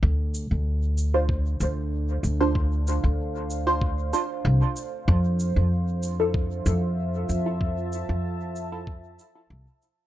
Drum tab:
SH |-x-x-x-x|-x-x-x-x|-x-x-x-x|-x-x-x-x|
BD |o---o---|o---o---|o---o---|o---o---|